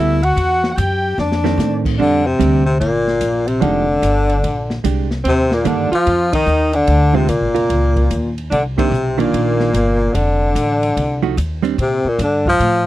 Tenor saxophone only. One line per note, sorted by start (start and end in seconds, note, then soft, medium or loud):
0.00 0.26 E4 medium
0.24 0.73 F#4 loud
0.75 0.81 F#4 medium
0.80 1.19 G4 loud
1.20 1.82 D4 medium
2.00 2.28 D3 loud
2.27 2.65 C3 medium
2.66 2.79 C3 medium
2.80 3.49 A#2 loud
3.48 3.64 C3 medium
3.62 4.84 D3 loud
5.28 5.55 C3 loud
5.54 5.69 A#2 medium
5.67 5.93 D3 medium
5.94 6.31 F3 loud
6.35 6.77 D#3 loud
6.75 7.17 D3 loud
7.16 7.31 C3 medium
7.29 8.37 A#2 medium
8.52 8.64 D3 medium
8.78 9.21 C3 medium
9.20 10.17 A#2 medium
10.15 11.37 D3 loud
11.82 12.10 C3 loud
12.08 12.20 A#2 medium
12.23 12.46 D3 medium
12.49 12.85 F3 loud